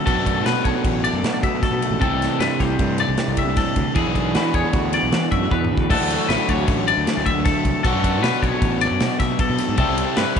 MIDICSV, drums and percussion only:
0, 0, Header, 1, 2, 480
1, 0, Start_track
1, 0, Tempo, 388350
1, 83, Time_signature, 5, 2, 24, 8
1, 12851, End_track
2, 0, Start_track
2, 0, Title_t, "Drums"
2, 85, Note_on_c, 9, 36, 116
2, 88, Note_on_c, 9, 51, 116
2, 209, Note_off_c, 9, 36, 0
2, 212, Note_off_c, 9, 51, 0
2, 326, Note_on_c, 9, 36, 78
2, 329, Note_on_c, 9, 51, 89
2, 450, Note_off_c, 9, 36, 0
2, 452, Note_off_c, 9, 51, 0
2, 567, Note_on_c, 9, 51, 97
2, 572, Note_on_c, 9, 38, 120
2, 691, Note_off_c, 9, 51, 0
2, 696, Note_off_c, 9, 38, 0
2, 804, Note_on_c, 9, 51, 77
2, 806, Note_on_c, 9, 36, 75
2, 928, Note_off_c, 9, 51, 0
2, 929, Note_off_c, 9, 36, 0
2, 1044, Note_on_c, 9, 51, 105
2, 1045, Note_on_c, 9, 36, 103
2, 1168, Note_off_c, 9, 51, 0
2, 1169, Note_off_c, 9, 36, 0
2, 1290, Note_on_c, 9, 51, 88
2, 1413, Note_off_c, 9, 51, 0
2, 1535, Note_on_c, 9, 51, 91
2, 1540, Note_on_c, 9, 38, 114
2, 1659, Note_off_c, 9, 51, 0
2, 1664, Note_off_c, 9, 38, 0
2, 1770, Note_on_c, 9, 36, 83
2, 1771, Note_on_c, 9, 51, 75
2, 1894, Note_off_c, 9, 36, 0
2, 1894, Note_off_c, 9, 51, 0
2, 2011, Note_on_c, 9, 36, 114
2, 2013, Note_on_c, 9, 51, 104
2, 2018, Note_on_c, 9, 38, 39
2, 2135, Note_off_c, 9, 36, 0
2, 2137, Note_off_c, 9, 51, 0
2, 2142, Note_off_c, 9, 38, 0
2, 2253, Note_on_c, 9, 51, 78
2, 2377, Note_off_c, 9, 51, 0
2, 2492, Note_on_c, 9, 36, 111
2, 2493, Note_on_c, 9, 51, 90
2, 2615, Note_off_c, 9, 36, 0
2, 2616, Note_off_c, 9, 51, 0
2, 2744, Note_on_c, 9, 51, 75
2, 2748, Note_on_c, 9, 38, 39
2, 2867, Note_off_c, 9, 51, 0
2, 2872, Note_off_c, 9, 38, 0
2, 2970, Note_on_c, 9, 51, 106
2, 2975, Note_on_c, 9, 38, 119
2, 3094, Note_off_c, 9, 51, 0
2, 3099, Note_off_c, 9, 38, 0
2, 3215, Note_on_c, 9, 36, 74
2, 3217, Note_on_c, 9, 51, 69
2, 3222, Note_on_c, 9, 38, 33
2, 3339, Note_off_c, 9, 36, 0
2, 3341, Note_off_c, 9, 51, 0
2, 3346, Note_off_c, 9, 38, 0
2, 3450, Note_on_c, 9, 51, 103
2, 3453, Note_on_c, 9, 36, 106
2, 3573, Note_off_c, 9, 51, 0
2, 3576, Note_off_c, 9, 36, 0
2, 3683, Note_on_c, 9, 51, 78
2, 3807, Note_off_c, 9, 51, 0
2, 3924, Note_on_c, 9, 51, 94
2, 3929, Note_on_c, 9, 38, 98
2, 4048, Note_off_c, 9, 51, 0
2, 4053, Note_off_c, 9, 38, 0
2, 4164, Note_on_c, 9, 51, 85
2, 4171, Note_on_c, 9, 36, 73
2, 4287, Note_off_c, 9, 51, 0
2, 4295, Note_off_c, 9, 36, 0
2, 4407, Note_on_c, 9, 51, 118
2, 4412, Note_on_c, 9, 36, 110
2, 4412, Note_on_c, 9, 38, 38
2, 4531, Note_off_c, 9, 51, 0
2, 4536, Note_off_c, 9, 36, 0
2, 4536, Note_off_c, 9, 38, 0
2, 4646, Note_on_c, 9, 51, 85
2, 4651, Note_on_c, 9, 36, 72
2, 4769, Note_off_c, 9, 51, 0
2, 4774, Note_off_c, 9, 36, 0
2, 4888, Note_on_c, 9, 51, 112
2, 4893, Note_on_c, 9, 36, 115
2, 5011, Note_off_c, 9, 51, 0
2, 5017, Note_off_c, 9, 36, 0
2, 5133, Note_on_c, 9, 36, 80
2, 5136, Note_on_c, 9, 51, 78
2, 5257, Note_off_c, 9, 36, 0
2, 5259, Note_off_c, 9, 51, 0
2, 5373, Note_on_c, 9, 51, 106
2, 5378, Note_on_c, 9, 38, 126
2, 5497, Note_off_c, 9, 51, 0
2, 5502, Note_off_c, 9, 38, 0
2, 5610, Note_on_c, 9, 51, 70
2, 5613, Note_on_c, 9, 36, 76
2, 5733, Note_off_c, 9, 51, 0
2, 5737, Note_off_c, 9, 36, 0
2, 5848, Note_on_c, 9, 51, 99
2, 5853, Note_on_c, 9, 36, 110
2, 5972, Note_off_c, 9, 51, 0
2, 5976, Note_off_c, 9, 36, 0
2, 6091, Note_on_c, 9, 51, 85
2, 6214, Note_off_c, 9, 51, 0
2, 6332, Note_on_c, 9, 51, 91
2, 6337, Note_on_c, 9, 38, 102
2, 6456, Note_off_c, 9, 51, 0
2, 6461, Note_off_c, 9, 38, 0
2, 6571, Note_on_c, 9, 51, 70
2, 6574, Note_on_c, 9, 36, 73
2, 6694, Note_off_c, 9, 51, 0
2, 6698, Note_off_c, 9, 36, 0
2, 6816, Note_on_c, 9, 36, 110
2, 6939, Note_off_c, 9, 36, 0
2, 6978, Note_on_c, 9, 45, 68
2, 7102, Note_off_c, 9, 45, 0
2, 7138, Note_on_c, 9, 36, 111
2, 7261, Note_off_c, 9, 36, 0
2, 7299, Note_on_c, 9, 36, 125
2, 7299, Note_on_c, 9, 49, 126
2, 7422, Note_off_c, 9, 36, 0
2, 7423, Note_off_c, 9, 49, 0
2, 7544, Note_on_c, 9, 51, 94
2, 7549, Note_on_c, 9, 38, 41
2, 7668, Note_off_c, 9, 51, 0
2, 7673, Note_off_c, 9, 38, 0
2, 7784, Note_on_c, 9, 51, 110
2, 7789, Note_on_c, 9, 38, 121
2, 7908, Note_off_c, 9, 51, 0
2, 7913, Note_off_c, 9, 38, 0
2, 8018, Note_on_c, 9, 36, 71
2, 8018, Note_on_c, 9, 51, 80
2, 8141, Note_off_c, 9, 51, 0
2, 8142, Note_off_c, 9, 36, 0
2, 8253, Note_on_c, 9, 51, 113
2, 8258, Note_on_c, 9, 36, 122
2, 8377, Note_off_c, 9, 51, 0
2, 8381, Note_off_c, 9, 36, 0
2, 8501, Note_on_c, 9, 51, 83
2, 8625, Note_off_c, 9, 51, 0
2, 8740, Note_on_c, 9, 51, 109
2, 8745, Note_on_c, 9, 38, 103
2, 8864, Note_off_c, 9, 51, 0
2, 8869, Note_off_c, 9, 38, 0
2, 8977, Note_on_c, 9, 51, 84
2, 8978, Note_on_c, 9, 36, 77
2, 9100, Note_off_c, 9, 51, 0
2, 9102, Note_off_c, 9, 36, 0
2, 9213, Note_on_c, 9, 51, 118
2, 9216, Note_on_c, 9, 36, 124
2, 9218, Note_on_c, 9, 38, 41
2, 9336, Note_off_c, 9, 51, 0
2, 9340, Note_off_c, 9, 36, 0
2, 9341, Note_off_c, 9, 38, 0
2, 9455, Note_on_c, 9, 36, 75
2, 9455, Note_on_c, 9, 51, 77
2, 9578, Note_off_c, 9, 36, 0
2, 9579, Note_off_c, 9, 51, 0
2, 9697, Note_on_c, 9, 36, 115
2, 9697, Note_on_c, 9, 51, 114
2, 9821, Note_off_c, 9, 36, 0
2, 9821, Note_off_c, 9, 51, 0
2, 9938, Note_on_c, 9, 36, 83
2, 9940, Note_on_c, 9, 51, 88
2, 10061, Note_off_c, 9, 36, 0
2, 10063, Note_off_c, 9, 51, 0
2, 10180, Note_on_c, 9, 51, 106
2, 10185, Note_on_c, 9, 38, 127
2, 10304, Note_off_c, 9, 51, 0
2, 10309, Note_off_c, 9, 38, 0
2, 10416, Note_on_c, 9, 36, 81
2, 10424, Note_on_c, 9, 51, 67
2, 10539, Note_off_c, 9, 36, 0
2, 10548, Note_off_c, 9, 51, 0
2, 10652, Note_on_c, 9, 36, 108
2, 10653, Note_on_c, 9, 51, 101
2, 10776, Note_off_c, 9, 36, 0
2, 10777, Note_off_c, 9, 51, 0
2, 10891, Note_on_c, 9, 51, 91
2, 11015, Note_off_c, 9, 51, 0
2, 11128, Note_on_c, 9, 51, 97
2, 11133, Note_on_c, 9, 38, 104
2, 11251, Note_off_c, 9, 51, 0
2, 11256, Note_off_c, 9, 38, 0
2, 11368, Note_on_c, 9, 51, 83
2, 11369, Note_on_c, 9, 36, 78
2, 11373, Note_on_c, 9, 38, 37
2, 11491, Note_off_c, 9, 51, 0
2, 11492, Note_off_c, 9, 36, 0
2, 11496, Note_off_c, 9, 38, 0
2, 11604, Note_on_c, 9, 51, 118
2, 11608, Note_on_c, 9, 36, 121
2, 11728, Note_off_c, 9, 51, 0
2, 11731, Note_off_c, 9, 36, 0
2, 11845, Note_on_c, 9, 51, 87
2, 11850, Note_on_c, 9, 38, 40
2, 11968, Note_off_c, 9, 51, 0
2, 11973, Note_off_c, 9, 38, 0
2, 12082, Note_on_c, 9, 51, 110
2, 12089, Note_on_c, 9, 36, 110
2, 12205, Note_off_c, 9, 51, 0
2, 12212, Note_off_c, 9, 36, 0
2, 12330, Note_on_c, 9, 51, 96
2, 12454, Note_off_c, 9, 51, 0
2, 12565, Note_on_c, 9, 51, 111
2, 12570, Note_on_c, 9, 38, 120
2, 12688, Note_off_c, 9, 51, 0
2, 12693, Note_off_c, 9, 38, 0
2, 12810, Note_on_c, 9, 36, 76
2, 12811, Note_on_c, 9, 51, 76
2, 12851, Note_off_c, 9, 36, 0
2, 12851, Note_off_c, 9, 51, 0
2, 12851, End_track
0, 0, End_of_file